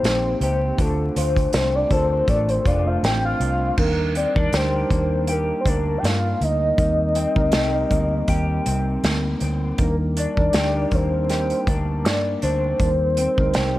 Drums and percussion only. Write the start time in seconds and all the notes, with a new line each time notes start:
0.04 snare, closed hi-hat
0.41 closed hi-hat
0.78 kick, closed hi-hat
1.16 closed hi-hat
1.36 kick, closed hi-hat
1.53 snare, closed hi-hat
1.91 kick, closed hi-hat
2.28 kick, closed hi-hat
2.49 closed hi-hat
2.65 kick, closed hi-hat
3.04 snare, closed hi-hat
3.41 closed hi-hat
3.78 kick, crash
4.15 closed hi-hat
4.36 kick
4.53 snare, closed hi-hat
4.90 kick, closed hi-hat
5.27 closed hi-hat
5.66 kick, closed hi-hat
6.04 snare, closed hi-hat
6.42 closed hi-hat
6.78 kick, closed hi-hat
7.15 closed hi-hat
7.36 kick
7.52 snare, closed hi-hat
7.91 kick, closed hi-hat
8.28 kick, closed hi-hat
8.66 closed hi-hat
9.04 snare, closed hi-hat
9.40 closed hi-hat
9.78 kick, closed hi-hat
10.17 closed hi-hat
10.37 kick
10.53 snare, closed hi-hat
10.91 kick, closed hi-hat
11.29 snare, closed hi-hat
11.50 closed hi-hat
11.67 kick, closed hi-hat
12.05 snare, closed hi-hat
12.42 closed hi-hat
12.80 kick, closed hi-hat
13.17 closed hi-hat
13.38 kick
13.54 snare, closed hi-hat